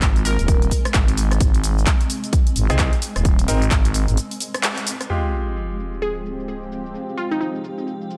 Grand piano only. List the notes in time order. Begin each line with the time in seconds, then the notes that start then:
2.70 C4 D#4 G#4
3.48 C4 D#4 A#4
5.10 G#3 F4 G4